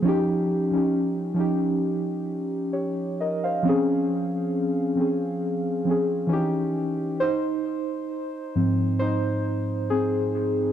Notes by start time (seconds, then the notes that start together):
0.02 F3 C#4 D#4
0.08 G4
0.71 F3 C#4 D#4
0.77 G4
1.34 F3 C#4
1.38 D#4 G4
2.73 G4 C#5
3.20 A#4 D#5
3.44 C5 F5
3.63 F3 C4
3.67 C#4 G#4
4.95 F3 C4 C#4
5.01 G#4
5.85 F3 C4
5.89 C#4 G#4
6.27 E3 C#4
6.31 D#4 G4
7.20 D#4 C5
8.55 G#2 F3 C4
8.99 D#4 C5
9.90 C4 G#4